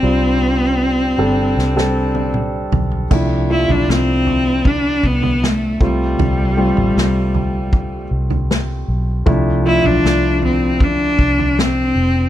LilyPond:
<<
  \new Staff \with { instrumentName = "Cello" } { \time 4/4 \key d \dorian \tempo 4 = 78 c'2. r4 | r8 e'16 d'16 c'4 d'8 b8 a8 g8~ | g2~ g8 r4. | r8 e'16 d'8. c'8 d'4 c'4 | }
  \new Staff \with { instrumentName = "Grand piano" } { \time 4/4 \key d \dorian <g c' d' f'>4. <g c' d' a'>8. <g c' d' a'>4.~ <g c' d' a'>16 | <f a d' e'>8 <f a d' f'>2 r4 <g a c' f'>8~ | <g a c' f'>8 <g a c' f'>2 r4. | <f a d' e'>8 <f a d' f'>2 r4. | }
  \new Staff \with { instrumentName = "Grand piano" } { \clef bass \time 4/4 \key d \dorian c4. r2 r8 | c4. r2 c8~ | c4 r2. | c4. r2 r8 | }
  \new Staff \with { instrumentName = "Fingered electric bass" } { \clef bass \time 4/4 \key d \dorian c,4. g,,8 c,4. b,,8 | c,8. b,,16 c,4. c,4 c,8 | c,8. a,,16 c,4. c,4 b,,8 | c,8. b,,16 c,4. c,4 f,,8 | }
  \new DrumStaff \with { instrumentName = "Drums" } \drummode { \time 4/4 r4 r4 sn16 sn8 tommh16 toml8 tomfh16 tomfh16 | <cymc bd tomfh>8. tomfh16 sn8 tomfh8 <bd tomfh>8 bd16 tomfh16 sn8 bd8 | tomfh8. tomfh16 sn8 tomfh8 <bd tomfh>8. tomfh16 sn4 | <bd tomfh>8. tomfh16 sn8 tomfh8 <bd tomfh>8 bd16 tomfh16 sn4 | }
>>